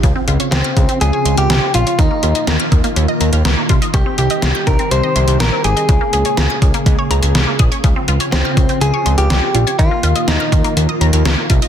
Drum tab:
HH |x-xxx-xxx-xxx-xx|x-xxx-xxx-xxx-xx|x-xxx-xxx-xxx-xx|x-xxx-xxx-xxx-xx|
SD |----o-------o---|----o-------o---|----o-------o---|----o-------o---|
BD |o-----o---------|o-----o-------o-|o-----o---------|o-----o-o-----o-|

HH |x-xxx-xxx-xxx-xx|x-xxx-xxx-xxx-xx|
SD |----o-------o---|----o-------o---|
BD |o-----o---------|o-----o-------o-|